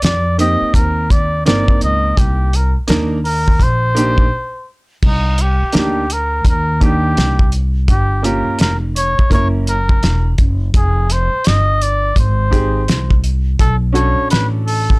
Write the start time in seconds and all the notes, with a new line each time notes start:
0.02 F2 D5, snare, closed hi-hat
0.38 A#3 C4 D#4 G4 D#5, closed hi-hat
0.61 muted upright bass stroke
0.74 D#2 A#4, kick, closed hi-hat
1.11 D5, kick, closed hi-hat
1.46 G1 A#3 C4 D#4 A#4 D5, snare, closed hi-hat
1.68 kick
1.81 C#2 D#5, closed hi-hat
2.17 C2 G4, kick, closed hi-hat
2.53 A#4, closed hi-hat
2.76 muted upright bass stroke
2.87 D#2 A#3 D4 D#4 A#4, snare, closed hi-hat
3.25 A#4, open hi-hat
3.48 kick
3.60 A#1 C5, kick, closed hi-hat
3.95 A#3 D4 D#4 G4, closed hi-hat
4.18 kick
5.03 C2, kick, crash
5.07 D#4
5.38 G4, closed hi-hat
5.62 muted upright bass stroke
5.72 D2 A#3 D4 D#4 G4, snare, closed hi-hat
5.77 G4
6.10 A#4, closed hi-hat
6.45 D#2, kick, closed hi-hat
6.49 A#4
6.80 A#3 D4 D#4 G4, kick, closed hi-hat
7.17 C2, snare, closed hi-hat
7.39 kick
7.52 closed hi-hat
7.88 G1 G4, kick, closed hi-hat
8.23 A#3 C#4 F4 G4 A#4, closed hi-hat
8.47 muted upright bass stroke
8.59 F1 A#4, snare, closed hi-hat
8.96 C#5, closed hi-hat
9.19 kick
9.30 F#1 A#3 C#4 E4 A#4 C#5, kick, closed hi-hat
9.67 A#4, closed hi-hat
9.89 kick
10.03 E1, snare, closed hi-hat
10.38 F#1, kick, closed hi-hat
10.74 F1 G#4, kick, closed hi-hat
11.10 C5, closed hi-hat
11.33 muted upright bass stroke
11.44 G1 D#5, snare, closed hi-hat
11.82 D5, closed hi-hat
12.16 G#1 C5, kick, closed hi-hat
12.51 C4 D#4 G4 G#4, kick, closed hi-hat
12.88 C2, snare, closed hi-hat
13.11 kick
13.24 closed hi-hat
13.60 B1 A4, kick, closed hi-hat
13.93 C#4 D4 F#4 A4 C#5, closed hi-hat
14.19 muted upright bass stroke
14.30 A1 B4, snare, closed hi-hat
14.66 A4, open hi-hat
14.90 kick